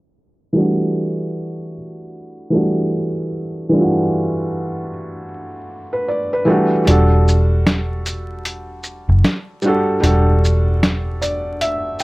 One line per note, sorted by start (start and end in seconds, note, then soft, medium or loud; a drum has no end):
0.53 1.72 E3 medium
0.53 1.73 G3 medium
0.53 1.73 A3 medium
0.53 1.74 D4 medium
0.58 1.74 F#4 medium
2.50 3.42 E3 medium
2.50 3.42 G3 medium
2.50 3.43 A3 medium
2.54 3.44 D4 medium
2.54 3.44 F#4 medium
3.69 4.88 E3 medium
3.69 4.88 G3 medium
3.69 4.89 A3 medium
3.69 4.90 D4 medium
3.74 3.81 F4 medium
3.81 4.94 F#4 medium
5.93 6.08 B4 medium
6.08 6.31 D5 medium
6.33 6.70 B4 medium
6.45 6.80 E3 medium
6.45 6.80 G3 medium
6.45 6.81 A3 medium
6.49 6.82 D4 medium
6.49 6.82 F#4 medium
6.85 9.05 E1 medium
6.85 8.04 G3 medium
6.85 8.05 D4 medium
6.85 8.06 F#4 medium
6.85 closed hi-hat medium
6.90 8.06 A4 medium
7.28 shaker soft
7.67 snare loud
7.67 closed hi-hat medium
8.06 closed hi-hat soft
8.06 shaker soft
8.45 closed hi-hat medium
8.83 shaker soft
9.09 9.22 F#1 medium
9.24 snare loud
9.24 closed hi-hat medium
9.62 9.94 G3 medium
9.62 9.95 D4 medium
9.62 9.96 F#4 medium
9.62 shaker soft
9.67 9.97 A4 medium
10.00 12.03 E1 medium
10.00 11.19 G3 medium
10.00 11.20 D4 medium
10.00 11.21 F#4 medium
10.00 closed hi-hat medium
10.06 11.22 A4 medium
10.45 shaker soft
10.83 snare medium
10.83 closed hi-hat medium
11.22 11.58 D5 medium
11.22 closed hi-hat soft
11.22 shaker soft
11.61 11.98 E5 medium
11.61 closed hi-hat medium
12.00 shaker soft